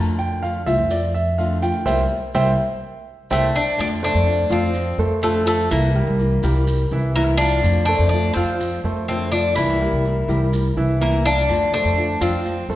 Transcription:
Already playing: upright bass F2, nylon-string guitar D3 A3 C4 F4, grand piano A5
0.19 grand piano G5, maracas
0.42 nylon-string guitar D3 A3 C4 F4, grand piano F5, maracas
0.66 upright bass C2, nylon-string guitar A3 C4 F4, grand piano E5, maracas
0.78 upright bass F2
0.91 grand piano D5, muted nylon-string guitar stroke, maracas
1.14 grand piano E5, maracas
1.38 nylon-string guitar D3 A3 C4 F4, grand piano F5, maracas
1.62 nylon-string guitar A3 C4 F4, grand piano G5, maracas
1.86 upright bass C2, nylon-string guitar G3 A#3 C4, grand piano C5 E5 G5, maracas
2.35 upright bass C2, nylon-string guitar G3 A#3 C4, grand piano C5 E5 G5, maracas
3.30 upright bass C2, nylon-string guitar G3 A#3 C4, cuban tres A3, grand piano C5 E5 G5, maracas
3.56 cuban tres D4
3.78 upright bass F2, nylon-string guitar D3 A3 C4 F4, cuban tres D4, maracas
4.03 grand piano A3 A4 C5, cuban tres D4, maracas
4.15 upright bass F2
4.26 nylon-string guitar D3 A3 C4 F4, maracas
4.50 upright bass F2, grand piano F3 F4 F5, nylon-string guitar A3 C4 F4, cuban tres C4, maracas
4.74 muted nylon-string guitar stroke, maracas
4.98 upright bass F2, grand piano A3 A4 C5, maracas
5.22 nylon-string guitar D3 A3 C4 F4, cuban tres A3, grand piano A3 A4 C5, maracas
5.46 cuban tres A3, nylon-string guitar A3 C4 F4, maracas
5.70 upright bass C2, nylon-string guitar C3 E3 A#3 C4 E4, grand piano E3 E4 E5, cuban tres A#3, maracas
5.95 grand piano G3 G4 A#4, maracas
6.07 upright bass C2
6.19 nylon-string guitar E3 A#3 C4 E4, maracas
6.43 upright bass C2, nylon-string guitar E3 A#3 C4 E4, grand piano G3 G4 A#4, maracas
6.66 muted nylon-string guitar stroke, maracas
6.91 upright bass C2, grand piano E3 E4 E5, maracas
7.14 nylon-string guitar C3 E3 A#3 C4 E4, grand piano E3 E4 E5, cuban tres A#3, maracas
7.37 grand piano F3 F4 F5, nylon-string guitar A#3 C4 E4, cuban tres D4, maracas
7.62 upright bass F2, nylon-string guitar D3 A3 C4 F4, maracas
7.85 grand piano A3 A4 C5, cuban tres D4, maracas
7.99 upright bass F2
8.09 nylon-string guitar D3 A3 C4, cuban tres D4
8.13 nylon-string guitar F4, maracas
8.33 upright bass F2, grand piano F3 F4 F5, nylon-string guitar A3 C4 F4, cuban tres C4, maracas
8.60 muted nylon-string guitar stroke, maracas
8.84 upright bass F2, grand piano A3 A4 C5, maracas
9.08 nylon-string guitar D3 A3 C4 F4, grand piano A3 A4 C5, cuban tres C4, maracas
9.32 nylon-string guitar A3 C4 F4, cuban tres D4, maracas
9.56 upright bass C2, nylon-string guitar C3 E3 A#3 C4 E4, grand piano E3 E4 E5, cuban tres E4, maracas
9.81 grand piano G3 G4 A#4, maracas
9.92 upright bass C2
10.05 nylon-string guitar E3 A#3 C4 E4, maracas
10.28 upright bass C2, nylon-string guitar E3 A#3 C4 E4, grand piano G3 G4 A#4, maracas
10.53 muted nylon-string guitar stroke, maracas
10.77 upright bass C2, grand piano E3 E4 E5, maracas
11.00 nylon-string guitar C3 E3 A#3 C4 E4, grand piano E3 E4 E5, cuban tres A#3, maracas
11.25 grand piano F3 F4 F5, nylon-string guitar A#3 C4 E4, cuban tres D4, maracas
11.49 upright bass F2, nylon-string guitar D3 A3 C4 F4, maracas
11.72 grand piano A3 A4 C5, cuban tres D4, maracas
11.85 upright bass F2
11.96 nylon-string guitar D3 A3 C4 F4, maracas
12.21 upright bass F2, grand piano F3 F4 F5, nylon-string guitar A3 C4 F4, cuban tres C4, maracas
12.45 muted nylon-string guitar stroke, maracas
12.69 upright bass F2, grand piano A3 A4 C5, maracas

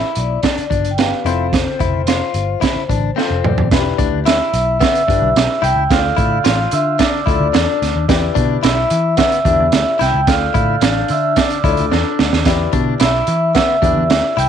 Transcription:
Already playing: clean electric guitar E4, vibraphone E5
0.15 picked electric bass B1, vibraphone D5, closed hi-hat
0.43 clean electric guitar D4, vibraphone D5, kick, snare, closed hi-hat
0.58 muted picked electric bass stroke, closed hi-hat
0.70 picked electric bass G1, clean electric guitar D4, kick, closed hi-hat
0.85 closed hi-hat
0.91 vibraphone G5
0.98 upright piano B3 D4 G4 B4, vibraphone F5, snare, closed hi-hat
1.25 picked electric bass F1, upright piano C4 F4 A4 C5, clean electric guitar E4, closed hi-hat
1.53 vibraphone C5, kick, snare, closed hi-hat
1.80 picked electric bass F1, clean electric guitar E4, kick, closed hi-hat
2.07 clean electric guitar F4, snare, closed hi-hat
2.34 picked electric bass G1, closed hi-hat
2.61 clean electric guitar E4, kick, snare, closed hi-hat
2.76 muted picked electric bass stroke
2.89 picked electric bass A1, clean electric guitar D4, upright piano A5, kick, closed hi-hat
3.16 clean electric guitar C4, upright piano C4 F4 A4 C5 F5, snare
3.30 picked electric bass F1
3.44 picked electric bass E1, upright piano D5, mid tom
3.58 picked electric bass D#1, floor tom
3.71 picked electric bass E1, upright piano D4 E4 F4 B4, kick, snare, closed hi-hat
3.79 upright piano G4
3.98 picked electric bass D2, clean electric guitar D4, kick, closed hi-hat
4.26 clean electric guitar E4, vibraphone E5, glockenspiel E6, snare, closed hi-hat
4.54 picked electric bass B1, closed hi-hat
4.80 clean electric guitar B3, vibraphone E5, glockenspiel E6, kick, snare, closed hi-hat
4.95 closed hi-hat
5.08 picked electric bass G1, clean electric guitar D4, upright piano D4 E4 G4 B4, kick, closed hi-hat
5.22 picked electric bass B1
5.36 picked electric bass B1, snare, closed hi-hat
5.62 picked electric bass C2, clean electric guitar E4, vibraphone G5, glockenspiel G6, closed hi-hat
5.76 picked electric bass C#2
5.89 picked electric bass D2, upright piano D4 F4 A4 C5, vibraphone F5, glockenspiel F6, kick, snare, closed hi-hat
5.98 upright piano D5
6.17 picked electric bass A2, clean electric guitar E4, kick, closed hi-hat
6.44 picked electric bass A1, clean electric guitar F4, snare, closed hi-hat
6.71 picked electric bass D3, vibraphone E5, glockenspiel E6, closed hi-hat
6.99 clean electric guitar D4, vibraphone D5, glockenspiel D6, kick, snare, closed hi-hat
7.26 picked electric bass D2, upright piano D4 F4 A4 D5, clean electric guitar E4, kick, closed hi-hat
7.40 picked electric bass D2
7.53 picked electric bass E2, clean electric guitar D4, snare, closed hi-hat
7.82 picked electric bass D2, snare, closed hi-hat
7.96 picked electric bass D#2
8.08 picked electric bass E2, upright piano E4 G4 B4 D5, kick, snare, closed hi-hat
8.35 picked electric bass B2, clean electric guitar D4, kick, closed hi-hat
8.63 picked electric bass B1, clean electric guitar E4, vibraphone E5, glockenspiel E6, snare, closed hi-hat
8.90 picked electric bass E3, closed hi-hat
9.17 clean electric guitar B3, vibraphone E5, glockenspiel E6, kick, snare, closed hi-hat
9.32 closed hi-hat
9.45 picked electric bass E2, clean electric guitar D4, upright piano E4 G4 B4 D5, kick, closed hi-hat
9.60 picked electric bass E2
9.72 picked electric bass D2, snare, closed hi-hat
9.99 picked electric bass C2, clean electric guitar E4, vibraphone G5, glockenspiel G6, snare, closed hi-hat
10.14 picked electric bass C#2
10.27 picked electric bass D2, upright piano D4 F4 A4 D5, vibraphone F5, glockenspiel F6, kick, snare, closed hi-hat
10.54 picked electric bass A2, clean electric guitar E4, kick, closed hi-hat
10.81 picked electric bass A1, clean electric guitar D4, snare, closed hi-hat
11.08 picked electric bass D3, vibraphone E5, glockenspiel E6, closed hi-hat
11.36 clean electric guitar D4, vibraphone D5, glockenspiel D6, kick, snare, closed hi-hat
11.50 closed hi-hat
11.64 picked electric bass D2, upright piano D4 F4 A4 C#5, clean electric guitar E4, kick, closed hi-hat
11.72 upright piano D5
11.77 picked electric bass D2, closed hi-hat
11.92 picked electric bass E2, clean electric guitar D4, snare
12.19 picked electric bass D2, snare
12.33 picked electric bass D#2, snare
12.45 picked electric bass E2, upright piano E4 G4 B4 D5, kick, snare, closed hi-hat
12.73 picked electric bass B2, clean electric guitar D4, kick, closed hi-hat
13.00 picked electric bass B1, clean electric guitar E4, vibraphone E5, glockenspiel E6, snare, closed hi-hat
13.27 picked electric bass E3, closed hi-hat
13.55 clean electric guitar B3, vibraphone E5, glockenspiel E6, kick, snare, closed hi-hat
13.82 picked electric bass E2, clean electric guitar D4, upright piano E4 G4 B4 D5, kick, closed hi-hat
13.96 picked electric bass E2
14.10 picked electric bass D2, snare, closed hi-hat
14.37 picked electric bass C2, clean electric guitar E4, vibraphone G5, glockenspiel G6, closed hi-hat

